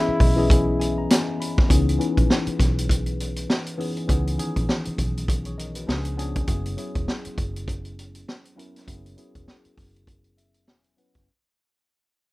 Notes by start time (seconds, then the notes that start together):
Already playing: E3 B3 C#4 E4 G#4 D#5
0.08 muted fingered electric bass stroke
0.20 B1 D#5, kick, open hi-hat
0.36 E3 B3 C#4 G#4 D#5 E5
0.50 G#5, kick, closed hi-hat
0.80 G#5, closed hi-hat
0.98 A#5
1.10 G#5, snare, closed hi-hat
1.40 B5, closed hi-hat
1.58 kick, snare
1.69 C#2 E3 B3 C#4 D#4 G#4, kick, closed hi-hat
1.89 closed hi-hat
1.99 E3 B3 C#4 D#4 B4, closed hi-hat
2.17 A#1, kick, closed hi-hat
2.30 snare
2.47 muted fingered electric bass stroke, closed hi-hat
2.59 B1, kick, snare, closed hi-hat
2.78 closed hi-hat
2.89 kick, closed hi-hat
3.06 closed hi-hat
3.20 closed hi-hat
3.36 closed hi-hat
3.50 snare
3.66 closed hi-hat
3.78 E3 B3 C#4 D#4 G#4, open hi-hat
3.97 closed hi-hat
4.07 C#2 E3 B3 C#4 D#4 G#4, kick, closed hi-hat
4.27 closed hi-hat
4.37 D#3 B3 C#4 D#4 G#4, closed hi-hat
4.44 E3
4.56 A#1, kick, closed hi-hat
4.69 snare
4.85 muted fingered electric bass stroke, closed hi-hat
4.98 B1, kick, closed hi-hat
5.17 closed hi-hat
5.28 kick, closed hi-hat
5.45 G#4 C#5, closed hi-hat
5.58 A#4 D#5, closed hi-hat
5.75 F#4 B4, closed hi-hat
5.87 C#2 F3 B3 C#4 D4 G#4, snare
6.05 closed hi-hat
6.17 F3 B3 C#4 D4 G#4, closed hi-hat
6.35 kick, closed hi-hat
6.47 F#1 F#3 B3 C#4 E4 G#4, kick, closed hi-hat
6.66 closed hi-hat
6.77 F#3 B3 C#4 E4 G#4, closed hi-hat
6.95 E1, kick, closed hi-hat
7.08 snare
7.25 muted fingered electric bass stroke, closed hi-hat
7.38 F#1, kick, closed hi-hat
7.56 closed hi-hat
7.68 kick, closed hi-hat
7.85 closed hi-hat
7.99 closed hi-hat
8.15 closed hi-hat
8.28 snare
8.45 closed hi-hat
8.56 F#3 B3 C#4 E4 A#4, closed hi-hat
8.76 snare, closed hi-hat
8.87 F#1 F#3 B3 C#4 E4 G#4, kick, closed hi-hat
9.06 closed hi-hat
9.17 F#3 B3 C#4 E4 G#4, closed hi-hat
9.35 E1, kick, closed hi-hat
9.48 snare
9.65 muted fingered electric bass stroke, closed hi-hat
9.78 F#1, kick, snare, open hi-hat
9.96 closed hi-hat
10.07 kick, closed hi-hat
10.24 closed hi-hat
10.37 E5, closed hi-hat
10.54 closed hi-hat
10.68 E1 G#5, snare
10.84 closed hi-hat
10.97 F#3 B3 C#4 E4 B4 F#5, closed hi-hat
11.14 F#1, kick, snare, closed hi-hat